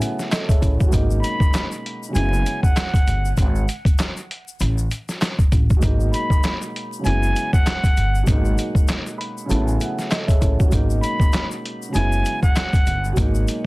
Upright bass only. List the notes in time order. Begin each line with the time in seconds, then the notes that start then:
0.62 A1
0.93 G#1
2.15 F#1
3.07 G1
3.38 G#1
4.61 A1
5.52 A1
5.83 G#1
7.05 F#1
7.97 G1
8.28 G#1
9.50 A1
10.42 A1
10.72 G#1
11.95 F#1
12.87 G1
13.17 G#1